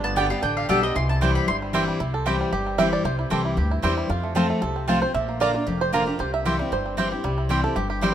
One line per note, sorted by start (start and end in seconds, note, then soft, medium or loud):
0.00 0.31 G1 loud
0.00 0.40 G2 medium
0.00 0.28 D4 medium
0.00 0.16 A5 loud
0.04 0.40 B3 medium
0.16 0.30 D3 medium
0.16 0.30 G3 medium
0.16 0.26 B3 medium
0.16 0.30 B3 medium
0.16 0.26 G4 medium
0.16 0.56 G4 medium
0.16 0.28 G4 loud
0.16 0.26 D5 medium
0.16 0.30 G5 medium
0.16 0.26 G5 loud
0.30 0.82 G3 medium
0.30 0.43 B3 medium
0.30 0.42 G4 medium
0.30 0.42 F5 loud
0.42 0.65 A1 medium
0.42 0.67 D3 medium
0.42 0.68 D4 medium
0.42 0.56 G5 medium
0.57 1.97 G4 medium
0.57 0.69 F5 medium
0.69 0.92 B1 medium
0.69 0.82 D3 medium
0.69 0.82 G3 loud
0.69 0.78 B3 medium
0.69 0.83 B3 loud
0.69 0.95 D4 medium
0.69 0.79 G4 loud
0.69 0.81 G4 loud
0.69 0.79 D5 medium
0.69 0.82 E5 medium
0.69 0.79 G5 loud
0.82 1.21 G3 medium
0.82 0.96 B3 soft
0.82 0.95 G4 medium
0.82 0.95 D#5 loud
0.95 1.36 C2 loud
0.95 1.45 C3 medium
0.95 1.32 E3 medium
0.95 1.09 C6 loud
1.09 1.45 E4 medium
1.09 1.21 A5 medium
1.21 1.46 E3 medium
1.21 1.59 G3 medium
1.21 1.47 G3 medium
1.21 1.31 C4 medium
1.21 1.47 C4 medium
1.21 1.31 E4 medium
1.21 1.47 E4 loud
1.21 1.31 C5 medium
1.21 1.35 G5 medium
1.21 1.31 G5 loud
1.35 1.71 C4 medium
1.35 1.47 B5 medium
1.48 1.88 G1 medium
1.48 1.98 G2 medium
1.48 1.73 E4 medium
1.48 1.56 C6 loud
1.62 1.87 G3 medium
1.73 1.98 E3 medium
1.73 1.99 G3 medium
1.73 1.83 C4 medium
1.73 1.99 C4 loud
1.73 1.83 E4 medium
1.73 1.99 E4 medium
1.73 2.00 E4 loud
1.73 1.83 C5 loud
1.73 1.84 G5 loud
1.88 2.00 G3 medium
2.00 2.41 C2 medium
2.00 2.50 C3 medium
2.00 2.14 E4 medium
2.14 2.25 A4 medium
2.26 2.51 E3 medium
2.26 2.52 G3 medium
2.26 2.35 C4 medium
2.26 2.52 C4 medium
2.26 2.36 E4 medium
2.26 2.52 E4 medium
2.26 2.51 G4 medium
2.26 2.36 C5 medium
2.26 2.36 G5 medium
2.41 2.76 G3 medium
2.52 2.93 G1 medium
2.52 3.02 G2 medium
2.52 2.80 G4 medium
2.66 4.06 C4 medium
2.78 3.03 E3 medium
2.78 3.04 G3 medium
2.78 2.88 C4 medium
2.78 3.04 C4 loud
2.78 2.88 E4 medium
2.78 3.05 E4 loud
2.78 2.88 C5 medium
2.78 2.91 E5 loud
2.78 2.88 G5 medium
2.93 3.04 D5 medium
3.05 3.25 C2 medium
3.05 3.55 C3 medium
3.05 3.18 C5 loud
3.19 3.31 E4 medium
3.30 3.54 C2 medium
3.30 3.56 E3 medium
3.30 3.56 G3 medium
3.30 3.40 C4 medium
3.30 3.56 C4 medium
3.30 3.40 E4 medium
3.30 3.57 E4 medium
3.30 3.45 A4 medium
3.30 3.41 C5 medium
3.30 3.41 G5 medium
3.45 3.70 E4 medium
3.57 3.79 D2 medium
3.57 4.07 G2 medium
3.57 3.70 G4 medium
3.71 3.96 E4 medium
3.82 4.06 E2 medium
3.82 4.08 E3 medium
3.82 4.08 G3 medium
3.82 4.10 G3 medium
3.82 3.93 C4 medium
3.82 4.09 C4 medium
3.82 3.93 E4 medium
3.82 4.09 E4 medium
3.82 3.93 C5 loud
3.82 3.93 G5 loud
3.97 4.10 E4 medium
4.09 4.60 F2 medium
4.09 4.50 F2 loud
4.09 4.34 F4 loud
4.23 4.49 A3 medium
4.35 4.60 F3 medium
4.35 4.61 A3 medium
4.35 4.45 C4 medium
4.35 4.61 C4 loud
4.35 4.45 F4 medium
4.35 4.62 F4 medium
4.35 4.61 A4 medium
4.35 4.46 C5 medium
4.35 4.46 A5 medium
4.50 4.86 A3 medium
4.62 5.03 C2 medium
4.62 5.12 C3 medium
4.62 4.88 A4 loud
4.76 5.12 C4 medium
4.88 5.01 F3 medium
4.88 5.02 A3 medium
4.88 4.97 C4 medium
4.88 5.02 C4 loud
4.88 4.98 F4 medium
4.88 5.01 F4 medium
4.88 5.00 F4 medium
4.88 4.98 C5 medium
4.88 4.98 A5 loud
5.01 5.15 C4 soft
5.01 5.14 F4 medium
5.01 5.14 C5 loud
5.14 5.55 A#1 loud
5.14 5.64 A#2 medium
5.14 5.41 E5 loud
5.28 5.54 A#3 medium
5.40 5.54 D3 medium
5.40 5.50 A#3 medium
5.40 5.54 A#3 medium
5.40 5.55 D4 medium
5.40 5.50 F4 medium
5.40 5.52 F4 loud
5.40 5.50 D5 medium
5.40 5.65 D5 loud
5.40 5.51 A#5 medium
5.54 5.91 A#3 medium
5.54 5.67 D4 soft
5.54 5.66 F4 medium
5.67 6.08 F1 medium
5.67 6.17 F2 medium
5.67 6.04 G4 medium
5.81 5.94 C5 loud
5.92 6.06 D3 medium
5.92 6.02 A#3 medium
5.92 6.07 A#3 medium
5.92 6.07 D4 loud
5.92 6.03 F4 loud
5.92 6.05 F4 medium
5.92 6.18 A#4 loud
5.92 6.03 D5 medium
5.92 6.03 A#5 medium
6.06 6.20 D4 soft
6.06 6.19 F4 medium
6.06 6.20 G4 medium
6.19 6.60 C2 loud
6.19 6.69 C3 medium
6.19 6.33 C5 loud
6.34 6.72 E5 medium
6.45 6.59 E3 medium
6.45 6.59 G3 medium
6.45 6.55 C4 medium
6.45 6.59 C4 medium
6.45 6.55 E4 medium
6.45 6.58 E4 medium
6.45 6.83 G4 medium
6.45 6.55 C5 medium
6.45 6.55 G5 medium
6.59 6.95 G3 medium
6.59 6.72 C4 medium
6.59 6.71 E4 medium
6.72 7.12 G1 medium
6.72 7.22 G2 medium
6.72 6.97 C5 medium
6.86 7.22 C4 medium
6.97 7.11 E3 medium
6.97 7.11 G3 medium
6.97 7.07 C4 medium
6.97 7.12 C4 loud
6.97 7.07 E4 medium
6.97 7.35 E4 medium
6.97 7.10 E4 medium
6.97 7.07 C5 loud
6.97 7.08 G5 loud
7.11 7.24 C4 soft
7.11 7.23 E4 medium
7.11 7.48 G4 medium
7.24 7.65 C2 loud
7.24 7.74 C3 medium
7.24 7.61 G3 medium
7.38 7.74 E4 medium
7.49 7.63 E3 medium
7.49 7.63 G3 medium
7.49 7.59 C4 medium
7.49 7.64 C4 medium
7.49 7.60 E4 medium
7.49 7.62 E4 medium
7.49 7.75 G4 medium
7.49 7.60 C5 medium
7.49 7.60 G5 medium
7.64 7.77 C4 soft
7.64 7.76 E4 medium
7.64 7.77 A4 medium
7.76 8.14 G1 medium
7.76 8.14 G2 medium
7.76 7.89 G4 medium
7.90 8.13 G4 medium
8.01 8.14 E3 medium
8.01 8.14 G3 medium
8.01 8.12 C4 medium
8.01 8.14 C4 medium
8.01 8.12 E4 medium
8.01 8.14 E4 loud
8.01 8.12 C5 loud
8.01 8.12 G5 loud